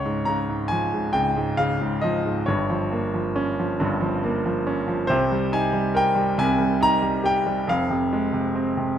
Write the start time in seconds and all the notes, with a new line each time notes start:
Already playing: C#2 C#5
0.05 G#2
0.25 C#3 A#5
0.49 G#2
0.68 F3 G#5
0.94 G#2
1.13 C#2 G5
1.37 G#2
1.57 C#3 F5
1.81 G#2
2.01 F3 D#5
2.25 G#2
2.46 G1 G2 C#5
2.70 F3
2.92 A#3
3.14 F3
3.36 C#4
3.59 F3
3.80 G1 G2
4.01 F3
4.24 A#3
4.46 F3
4.67 C#4
4.88 F3
5.07 C2 C3 C5
5.32 G3
5.52 D#4 G#5
5.73 G3
5.94 A#4 G5
6.15 G3
6.38 C2 C3 G#5
6.59 G3
6.81 D#4 A#5
7.02 G3
7.23 G4 G5
7.47 G3
7.67 F1 F2 F5
7.90 C3
8.13 G#3
8.33 C3
8.55 C4
8.77 C3